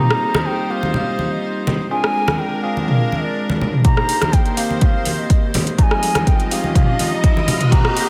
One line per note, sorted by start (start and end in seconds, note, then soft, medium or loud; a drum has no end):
0.00 1.89 G3 medium
0.00 0.67 A#3 medium
0.00 0.67 C4 medium
0.00 1.87 D#4 medium
0.00 0.67 F4 medium
0.00 0.67 G4 medium
0.00 1.89 C5 medium
0.00 0.47 A#5 loud
0.10 cross-stick loud
0.34 cross-stick medium
0.34 high conga loud
0.46 0.72 G5 loud
0.70 1.88 A#3 medium
0.70 1.88 C4 medium
0.70 1.88 F4 medium
0.70 1.88 G4 medium
0.70 0.94 F5 loud
0.83 high conga medium
0.94 1.33 F5 loud
0.94 low conga medium
1.19 high conga medium
1.32 1.67 D#5 medium
1.67 high conga medium
1.67 low conga medium
1.91 3.83 G#3 medium
1.91 2.61 C4 medium
1.91 2.61 D4 medium
1.91 3.83 D4 medium
1.91 2.61 F4 medium
1.91 2.61 G#4 loud
1.91 3.83 A#4 medium
1.91 2.40 G#5 loud
2.04 cross-stick medium
2.28 cross-stick medium
2.28 high conga loud
2.39 2.64 G5 loud
2.63 3.82 C4 medium
2.63 3.82 D4 medium
2.63 3.82 F4 medium
2.63 3.82 G#4 medium
2.63 2.81 F5 loud
2.77 high conga medium
2.82 2.89 G5 medium
2.87 3.26 F5 loud
2.87 mid tom medium
3.12 high conga medium
3.24 3.60 D5 medium
3.50 high conga medium
3.61 low conga medium
3.73 mid tom medium
3.84 5.77 D#3 medium
3.84 5.76 A#3 medium
3.84 4.55 A#3 medium
3.84 4.55 D4 medium
3.84 4.55 D#4 medium
3.84 4.55 G4 medium
3.84 5.76 C5 medium
3.84 4.35 A#5 loud
3.84 kick loud
3.84 closed hi-hat medium
3.84 mid tom medium
3.84 riser medium
3.97 cross-stick medium
4.09 open hi-hat medium
4.22 cross-stick medium
4.22 closed hi-hat soft
4.22 high conga medium
4.33 4.59 G5 loud
4.33 kick loud
4.33 closed hi-hat medium
4.46 closed hi-hat soft
4.57 5.76 A#3 medium
4.57 5.76 C4 medium
4.57 5.76 D#4 medium
4.57 5.76 G4 medium
4.57 4.81 F5 medium
4.57 open hi-hat medium
4.70 high conga medium
4.81 4.86 G5 medium
4.81 kick loud
4.81 closed hi-hat medium
4.81 low conga medium
4.85 5.20 F5 loud
5.05 open hi-hat medium
5.05 high conga medium
5.18 5.54 D#5 medium
5.30 kick loud
5.30 closed hi-hat medium
5.54 open hi-hat medium
5.54 high conga loud
5.54 low conga medium
5.67 closed hi-hat soft
5.78 7.70 F3 medium
5.78 6.48 G3 loud
5.78 6.48 G#3 medium
5.78 6.48 C4 medium
5.78 6.48 D#4 medium
5.78 7.70 F4 medium
5.78 8.09 D#5 medium
5.78 5.84 A#5 loud
5.78 kick loud
5.78 closed hi-hat medium
5.83 6.29 G#5 loud
5.91 cross-stick medium
6.03 open hi-hat medium
6.15 cross-stick medium
6.15 closed hi-hat soft
6.15 high conga medium
6.27 6.51 G5 loud
6.27 kick loud
6.27 closed hi-hat medium
6.40 closed hi-hat soft
6.51 7.69 G#3 medium
6.51 7.69 C4 medium
6.51 7.69 D#4 medium
6.51 7.69 G4 medium
6.51 6.74 F5 loud
6.51 open hi-hat medium
6.64 high conga medium
6.75 7.14 F5 loud
6.75 kick loud
6.75 closed hi-hat medium
6.75 mid tom loud
6.99 open hi-hat medium
6.99 high conga medium
7.13 7.48 D#5 medium
7.24 kick loud
7.24 closed hi-hat medium
7.37 high conga medium
7.48 open hi-hat medium
7.48 low conga medium
7.61 closed hi-hat soft
7.61 mid tom medium
7.72 8.09 A#3 medium
7.72 8.09 C4 medium
7.72 8.09 F4 medium
7.72 8.09 G4 medium
7.72 8.09 G4 loud
7.72 8.09 A#5 loud
7.72 kick loud
7.72 closed hi-hat medium
7.72 mid tom medium
7.85 cross-stick medium
7.97 open hi-hat medium